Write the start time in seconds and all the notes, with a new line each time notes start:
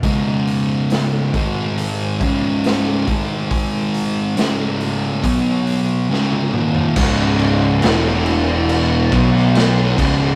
0.03 C#2 G#2 C#3, kick, open hi-hat
0.47 open hi-hat
0.90 snare, open hi-hat
1.34 G#2 D#3 G#3, kick, open hi-hat
1.78 open hi-hat
2.21 C#2 G#2 C#3, kick, open hi-hat
2.64 snare, open hi-hat
3.08 G#2 D#3 G#3, kick, open hi-hat
3.51 kick, open hi-hat
3.94 open hi-hat
4.37 C#2 G#2 C#3, snare, open hi-hat
4.81 open hi-hat
5.23 B2 F#3 B3, kick, open hi-hat
5.67 open hi-hat
6.10 C#2 G#2 C#3, snare
6.32 high tom
6.53 D#2 A#2 D#3, mid tom
6.75 floor tom
6.96 C#1 C#2 G#2 C#3 C#4 G#4 D#5, kick, crash
7.39 crash
7.82 E1 E2 B2 E3 E4 B4 F#5, snare, crash
8.07 snare
8.26 crash
8.69 crash
9.12 B1 B2 F#3 B3 F#4 C#5, kick, crash
9.36 snare
9.55 snare, crash
9.97 C#1 C#2 G#2 C#3 C#4 G#4 D#5, kick, crash